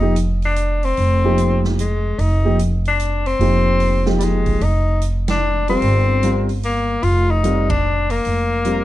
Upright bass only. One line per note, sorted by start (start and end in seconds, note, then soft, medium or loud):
0.00 0.93 F1 medium
0.98 2.15 F1 medium
2.18 3.36 F1 medium
3.39 4.57 F1 medium
4.61 5.78 F1 medium
5.82 6.99 G1 medium
7.03 8.20 F1 medium
8.26 8.84 F1 medium